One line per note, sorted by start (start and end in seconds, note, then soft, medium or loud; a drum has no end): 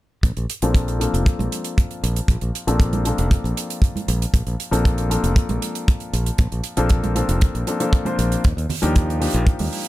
0.23 0.32 A#1 medium
0.23 kick loud
0.23 closed hi-hat medium
0.37 0.45 A#1 medium
0.37 closed hi-hat soft
0.50 closed hi-hat loud
0.62 1.06 A#1 medium
0.62 0.98 F3 medium
0.62 0.98 A#3 medium
0.62 0.98 C4 medium
0.62 0.98 D4 medium
0.62 0.98 A4 medium
0.62 closed hi-hat medium
0.75 kick medium
0.75 closed hi-hat medium
0.88 closed hi-hat soft
1.00 2.64 F3 medium
1.00 2.64 A#3 medium
1.00 2.64 C4 medium
1.00 2.64 D4 medium
1.00 2.65 A4 medium
1.00 closed hi-hat medium
1.14 1.26 F1 medium
1.14 closed hi-hat medium
1.26 muted fingered electric bass stroke soft
1.26 kick loud
1.26 closed hi-hat medium
1.39 1.47 A#1 medium
1.39 closed hi-hat soft
1.39 high conga medium
1.52 closed hi-hat medium
1.65 closed hi-hat medium
1.78 kick loud
1.78 closed hi-hat medium
1.91 closed hi-hat soft
2.04 2.19 A#1 medium
2.04 closed hi-hat medium
2.16 closed hi-hat medium
2.28 2.37 A#1 medium
2.28 kick loud
2.28 closed hi-hat medium
2.41 2.50 A#1 medium
2.41 closed hi-hat soft
2.55 closed hi-hat medium
2.67 3.11 A#1 medium
2.67 3.03 F3 medium
2.67 3.03 A#3 medium
2.67 3.03 C4 medium
2.67 3.03 D4 medium
2.67 3.03 A4 medium
2.67 closed hi-hat medium
2.80 kick loud
2.80 closed hi-hat medium
2.93 closed hi-hat soft
2.93 high conga medium
3.05 4.69 F3 medium
3.05 4.69 A#3 medium
3.05 4.70 C4 medium
3.05 4.70 D4 medium
3.05 4.70 A4 medium
3.05 closed hi-hat medium
3.18 3.34 F1 medium
3.18 closed hi-hat medium
3.31 kick loud
3.31 closed hi-hat medium
3.44 3.52 A#1 medium
3.44 closed hi-hat soft
3.57 closed hi-hat medium
3.70 closed hi-hat medium
3.82 kick loud
3.82 closed hi-hat medium
3.96 closed hi-hat soft
3.96 high conga medium
4.08 4.24 A#1 medium
4.08 closed hi-hat medium
4.22 closed hi-hat medium
4.34 4.42 A#1 medium
4.34 kick loud
4.34 closed hi-hat medium
4.47 4.55 A#1 medium
4.47 closed hi-hat soft
4.60 closed hi-hat medium
4.71 5.16 A#1 medium
4.71 5.07 F3 medium
4.71 5.07 A#3 medium
4.71 5.08 C4 medium
4.71 5.08 D4 medium
4.71 5.08 A4 loud
4.71 closed hi-hat medium
4.85 kick medium
4.85 closed hi-hat medium
4.98 closed hi-hat soft
5.09 6.74 F3 medium
5.09 6.74 A#3 medium
5.09 6.74 C4 medium
5.09 6.75 D4 medium
5.09 6.75 A4 medium
5.09 closed hi-hat medium
5.24 5.36 F1 medium
5.24 closed hi-hat medium
5.36 muted fingered electric bass stroke soft
5.36 kick loud
5.36 closed hi-hat medium
5.49 5.57 A#1 medium
5.49 closed hi-hat soft
5.49 high conga medium
5.62 closed hi-hat medium
5.75 closed hi-hat medium
5.88 kick loud
5.88 closed hi-hat medium
6.00 closed hi-hat soft
6.13 6.29 A#1 medium
6.13 closed hi-hat medium
6.26 closed hi-hat medium
6.38 6.47 A#1 medium
6.38 kick loud
6.38 closed hi-hat medium
6.52 6.60 A#1 medium
6.52 closed hi-hat soft
6.64 closed hi-hat medium
6.77 7.21 A#1 medium
6.77 7.13 F3 medium
6.77 7.13 A#3 medium
6.77 7.13 C4 medium
6.77 7.13 D4 medium
6.77 7.13 A4 loud
6.77 closed hi-hat medium
6.89 kick loud
6.89 closed hi-hat medium
7.04 closed hi-hat soft
7.04 high conga medium
7.15 7.64 F3 medium
7.15 7.65 A#3 medium
7.15 7.65 C4 medium
7.15 7.65 D4 medium
7.15 7.65 A4 medium
7.15 closed hi-hat medium
7.29 7.45 F1 loud
7.29 closed hi-hat medium
7.41 kick loud
7.41 closed hi-hat medium
7.55 7.63 A#1 medium
7.55 closed hi-hat soft
7.67 7.78 F3 medium
7.67 7.78 A#3 medium
7.67 7.79 C4 medium
7.67 7.79 D4 medium
7.67 7.79 A4 medium
7.67 closed hi-hat medium
7.80 8.03 F3 medium
7.80 8.03 A#3 medium
7.80 8.03 C4 medium
7.80 8.03 D4 medium
7.80 8.03 A4 medium
7.80 closed hi-hat medium
7.93 kick loud
7.93 closed hi-hat medium
8.05 8.42 F3 medium
8.05 8.43 A#3 medium
8.05 8.43 C4 medium
8.05 8.43 D4 medium
8.05 8.43 C5 medium
8.05 closed hi-hat soft
8.05 high conga medium
8.19 8.35 A#1 medium
8.19 closed hi-hat medium
8.32 closed hi-hat medium
8.44 8.53 D#2 medium
8.44 kick loud
8.44 closed hi-hat medium
8.57 8.65 D#2 medium
8.57 closed hi-hat soft
8.69 open hi-hat medium
8.69 low conga medium
8.82 9.26 D#2 medium
8.82 9.18 F3 medium
8.82 9.18 A#3 medium
8.82 9.18 D4 medium
8.82 9.18 D#4 medium
8.82 9.18 G4 loud
8.82 closed hi-hat medium
8.96 kick loud
8.96 closed hi-hat medium
9.10 closed hi-hat soft
9.20 9.88 F3 medium
9.20 9.88 A#3 medium
9.20 9.88 D4 medium
9.20 9.88 D#4 medium
9.20 9.88 G4 medium
9.20 open hi-hat loud
9.34 9.46 A#1 medium
9.34 closed hi-hat medium
9.47 kick loud
9.47 closed hi-hat medium
9.59 9.68 D#2 medium
9.59 open hi-hat medium
9.59 high conga medium
9.73 open hi-hat loud
9.85 closed hi-hat medium